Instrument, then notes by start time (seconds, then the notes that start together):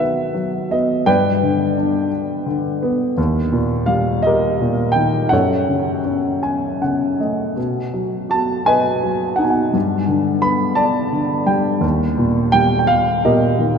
grand piano
Already playing: B2 D#3 F#3 E5 F#5
0.00 B4
0.34 F#3
0.71 B3 D#5
1.06 G2 B4 D5 G5
1.43 D3
1.77 D4
2.46 D3
2.83 B3
3.18 D#2
3.52 A#2
3.86 G3 F5
4.22 D#5
4.27 G4 A#4
4.61 A#2
4.92 G5
4.96 D#3
5.29 F#2 A4 C#5 F#5
5.69 C#3
6.05 C#4
6.43 G#5
6.82 C#3 F#5
7.20 A3 D#5
7.56 B2
7.93 F#3
8.30 F#4 A5
8.66 B4 D#5 G#5
9.03 F#3
9.36 D#4 F#5
9.44 G#5
9.50 F#5
9.73 G2
10.08 D3
10.42 B3 B5
10.75 D5 A5
11.13 D3
11.47 G3 G5
11.81 D#2
12.18 A#2
12.52 G3 G5
12.79 G5
12.87 F5
13.25 A#2 G4 A#4 D#5
13.59 D#3